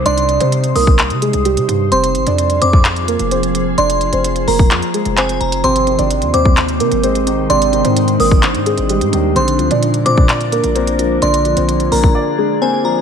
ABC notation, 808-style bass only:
X:1
M:4/4
L:1/16
Q:1/4=129
K:Ablyd
V:1 name="808-style bass" clef=bass
C,,3 C,3 C,,3 C,2 C,,2 C, G,,2 | F,,,2 A,,, F,,3 F,,4- F,, F,,,4- F,,, | F,,,3 F,,,3 F,,,2 F,, z2 F,,,3 F,,,2 | A,,,3 A,,,2 E,, E,,4 C, A,,,4- A,,, |
A,,,3 A,,3 A,,,3 A,,2 A,,,2 A,, E,,2 | B,,,2 D,, B,,3 B,,4- B,, B,,,4- B,,, | B,,,3 B,,,3 B,,,2 z8 |]